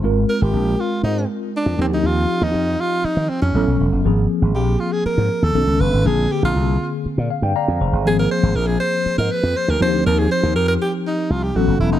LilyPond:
<<
  \new Staff \with { instrumentName = "Alto saxophone" } { \time 4/4 \key ees \major \tempo 4 = 120 r8 bes'16 g'8. f'8 ees'8 r8 d'8 c'16 ees'16 | f'8. ees'8. f'8 ees'8 c'16 des'4 r16 | r4 g'8 f'16 aes'16 bes'8. a'8. b'8 | aes'8 g'16 f'4 r2 r16 |
aes'16 bes'16 c''8 bes'16 aes'16 c''8. bes'16 ces''8 c''16 bes'16 c''8 | bes'16 aes'16 c''8 bes'16 bes'16 g'8 ees'8 f'16 g'16 fis'8 e'16 ees'16 | }
  \new Staff \with { instrumentName = "Tine electric piano" } { \time 4/4 \key ees \major << { r1 | r1 | r1 | r2 r8 f''16 g''16 <d'' f'' bes''>8 <aes' c''>8~ |
<aes' c''>8 r2. r8 | r1 | } \\ { <aes c' f' bes'>2.~ <aes c' f' bes'>8 <f c' ees' g'>8~ | <f c' ees' g'>2. <fis b cis' a'>4 | <f bes c' aes'>2. <dis b cis' a'>4 | <d bes c' aes'>1 |
<f bes ces' c' aes'>2.~ <f bes ces' c' aes'>8 <f c' ees' f' g'>8~ | <f c' ees' f' g'>2. <fis b cis' a'>4 | } >> }
  \new Staff \with { instrumentName = "Slap bass" } { \clef bass \time 4/4 \key ees \major aes,,8 r16 aes,,16 bes,,8 r8 aes,8 r8. f,16 ees,16 d,16 | ees,8 r16 ees,16 f,8 r8. ees16 r16 f,16 a,,16 b,,16 e,,16 fis,,16 | aes,,8 r16 aes,,16 bes,,8 r8. aes,16 r16 ees,16 b,,16 cis,16 fis,,16 aes,,16 | bes,,8 r16 bes,,16 c,8 r8. bes,16 r16 g,16 r16 f,16 f,,16 g,,16 |
aes,,8 r16 aes,,16 bes,,8 r8. aes,16 r16 f,16 r16 d,16 ees,16 d,16 | ees,8 r16 ees,16 f,8 r4 c,8 a,,16 fis,,16 e,,16 fis,,16 | }
>>